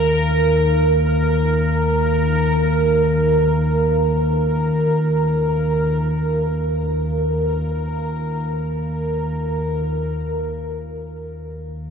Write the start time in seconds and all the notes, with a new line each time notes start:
Already playing: D#2 D#3 D#4 A#4 F5
9.90 D#2 D#3